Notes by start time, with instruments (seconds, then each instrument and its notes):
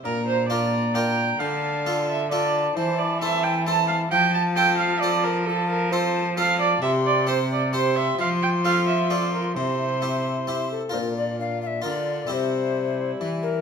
0.04 cello A#2, harpsichord A#2, bassoon D4, viola A#4, recorder A#5
0.27 viola C5
0.49 harpsichord D4 F4 A#4, bassoon D4, viola D5, recorder A#5
0.95 harpsichord D4 F4 A#4, viola G5
1.39 cello D3, harpsichord D3, bassoon D4, viola F5, recorder A5
1.87 harpsichord D4 F4 A4
2.09 viola E5
2.31 bassoon D4, harpsichord D4 F4 A4, viola D5, recorder A5
2.76 cello E3, harpsichord E3, bassoon E4, viola C5, recorder A5
2.98 viola D5
3.21 harpsichord C4 A4 C5, bassoon E4, viola E5, recorder A5
3.44 viola G5
3.67 harpsichord C4 A4 C5, bassoon E4, viola A5, recorder A5
3.88 viola F5
4.11 harpsichord F3, cello F3, bassoon F4, viola G5, recorder A5
4.34 viola A5
4.56 harpsichord C4 A4 C5, viola G5
4.77 viola F5
5.00 harpsichord C4 A4 C5, viola D5
5.24 viola A#4
5.46 bassoon F4, viola A4, recorder A5
5.69 viola A#4
5.91 harpsichord C4 A4 C5, bassoon F4, viola C5, recorder A5
6.37 harpsichord C4 A4 C5, bassoon F4, viola F5, recorder A5
6.61 viola D5
6.82 harpsichord C3, cello C3, bassoon G4, viola E5, recorder C6
7.06 viola D5
7.27 harpsichord C4 G4 C5, viola C5
7.51 viola D5
7.73 harpsichord C4 G4 C5, bassoon G4, viola C5, recorder C6
7.96 viola E5
8.18 cello F3, harpsichord F3, bassoon F4, viola F5, recorder C6
8.42 viola G5
8.64 harpsichord C4 F4 A4, viola F5
8.87 viola E5
9.10 harpsichord C4 F4 A4, viola D5
9.34 viola A#4
9.55 cello C3, harpsichord C3, bassoon E4, viola C5, recorder C6
10.02 harpsichord C4 E4 G4
10.47 harpsichord C4 E4 G4
10.71 recorder A4
10.89 bassoon D4, harpsichord F4 A#4, viola F4
10.94 harpsichord A#2, cello A#2, recorder C5
10.98 recorder A#4
11.17 recorder D5
11.38 bassoon D4, viola F4, recorder F5
11.62 recorder F5
11.67 recorder E5
11.82 cello D3, bassoon D4, harpsichord F4 A#4, viola F4, recorder D5
11.86 harpsichord D3
12.27 cello C3, harpsichord C3 C4 E4 G4, bassoon G3, viola E4, recorder D5
12.33 recorder C5
13.20 cello E3, harpsichord E3
13.43 recorder A#4